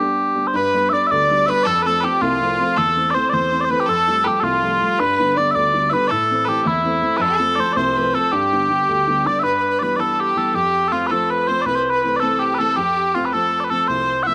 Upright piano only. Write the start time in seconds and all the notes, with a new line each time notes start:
Already playing: G2
0.00 G3 B3 D4
0.35 G3 B3 D4
0.54 G2
0.74 G3 B3 D4
0.91 G3 B3 D4
1.11 D2
1.30 G3 B3 D4
1.48 G3 B3 D4
1.65 F2
1.85 F3 A3 C4
2.04 F3 A3 C4
2.22 C2
2.40 F3 A3 C4
2.59 F3 A3 C4
2.77 E2
2.96 E3 A3 C4
3.14 E3 A3 C4
3.32 E2
3.52 E3 A3 C4
3.71 E3 A3 C4
3.88 F2
4.07 F3 G3 A3
4.25 F3 G3 A3
4.43 C2
4.62 F3 G3 A3
4.80 F3 G3 A3
4.99 G2
5.19 D3 G3 B3
5.37 D3 G3 B3
5.55 D2
5.74 D3 G3 B3
5.93 D3 G3 B3
6.10 A2
6.31 E3 A3 C4
6.47 E3 A3 C4
6.65 E2
6.84 E3 A3 C4
7.02 E3 A3 C4
7.19 F2
7.39 F3 A3 C4
7.58 F3 A3 C4
7.76 C2
7.96 F3 A3 C4
8.14 F3 A3 C4
8.32 G2
8.52 D3 G3 B3
8.70 D3 G3 B3
8.88 D2
9.07 D3 G3 B3
9.25 D3 G3 B3
9.42 G2
9.80 E3 G3 B3
9.98 E3 G3 B3
10.35 E3 G3 B3
10.54 F2
10.91 F3 A3 C4
11.11 F3 A3 C4
11.48 F3 A3 C4
11.66 C2
12.03 E3 A3 C4
12.21 E3 A3 C4
12.59 E3 A3 C4
12.77 F2
13.15 F3 A3 C4
13.34 F3 A3 C4
13.70 F3 A3 C4
13.89 C2
14.27 F3 A3 C4